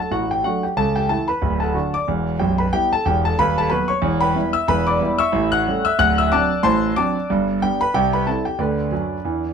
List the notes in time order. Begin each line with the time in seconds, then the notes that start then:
Already playing: A5
0.00 A4
0.11 A1 A2 F#4 F#5
0.31 G4 G5
0.44 F#3 A3 D4 F#4 F#5
0.63 G4 G5
0.77 C#2 C#3 A4 A5
0.96 G4 G5
1.09 E3 A3 E4 A4 A5
1.28 B4 B5
1.42 D1 D2
1.60 A4 F#5 A5
1.74 D3 D4 F#4
1.94 D5 D6
2.08 E1 E2
2.39 B0 B1 G4 G5
2.58 B4 B5
2.73 G3 B3 E4 G4 G5
2.93 A4 A5
3.05 E1 E2 G4 G5
3.25 A4 A5
3.39 D#1 D#2 B4 B5
3.58 A4 A5
3.70 F#3 B3 F#4 B4 B5
3.88 C#5 C#6
4.02 E1 E2
4.21 B4 G5 B5
4.35 G3 B3 E4
4.53 E5 E6
4.68 E1 E2 B4 B5
4.87 D5 B5 D6
5.00 G3 B3 E4
5.18 E5 C#6 E6
5.32 A1 A2
5.52 F#5 F#6
5.67 G3 A3 C#4
5.85 E5 E6
5.99 D1 D2 F#5 F#6
6.18 E5 E6
6.32 F#3 C4 D4 D5 A5 D6
6.63 A1 A2 C5 A5 C6
6.96 F#3 C4 D4 D5 A5 D6
7.30 G1 G2
7.62 G3 B3 D4 G4 G5
7.81 B4 B5
7.94 C2 C3 G4 G5
8.13 B4 B5
8.27 G3 C4 E4 A4 A5
8.45 G4 G5
8.59 D2 D3 D4 B4 D5
8.91 F#2 F#3
9.25 E2 E3